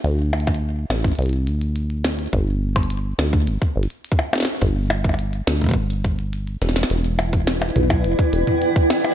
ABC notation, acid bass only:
X:1
M:4/4
L:1/8
Q:1/4=105
K:G
V:1 name="Acid bass" clef=bass
D,,3 A,,, C,, D,,3 | G,,,3 D,, G,,, G,,, z2 | G,,,3 D,, G,,,3 E,,, | E,,,3 B,,, E,,, E,,, z2 |]